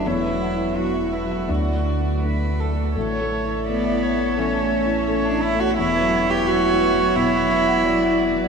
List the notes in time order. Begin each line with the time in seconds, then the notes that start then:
Already playing: E5
0.04 E1 E2 B3 E4 F#4 C#5
0.23 B4
0.29 F#3
0.40 F#5
0.52 E4
0.58 B4
0.75 F#3 E4 F#4
0.93 E5
0.99 E4
1.11 E4 B4
1.24 F#3
1.31 E5
1.48 D2 A3 D4 F#4 D5
1.67 D5
1.74 A3
1.86 F#4
1.98 F#4
2.04 D5
2.22 A3 D4 B4
2.48 F#4
2.59 A4 D5
2.72 A3
2.77 F#4
2.94 A1 A2 A3 A4 C#5 E5
3.13 C#5
3.21 A3
3.31 A5
3.45 E4
3.67 A3 B3 A4 D5
3.84 E5
3.91 E4
4.02 C#5
4.15 A3
4.37 E3 C#4 A4
4.55 A5
4.62 A3
4.72 C#5
4.85 E4
4.90 A5
5.07 A3 A4 C#5
5.25 D4 A5
5.32 E4
5.42 E4 A5
5.54 A3
5.60 F#4 C#5
5.76 E1 E2 B3 E4 F#4 C#5
5.95 B4
6.00 F#3
6.12 F#5
6.23 E4
6.29 G4 B4
6.46 F#3 E4 F#4
6.64 E5
6.70 E4
6.81 B4
6.93 F#3
7.15 B2 E4
7.33 F#5
7.38 F#3
7.50 B4
7.61 E4
7.68 F#5
7.84 F#3 E4 D5
8.02 F#5
8.07 E4
8.19 F#5
8.30 F#3
8.36 B4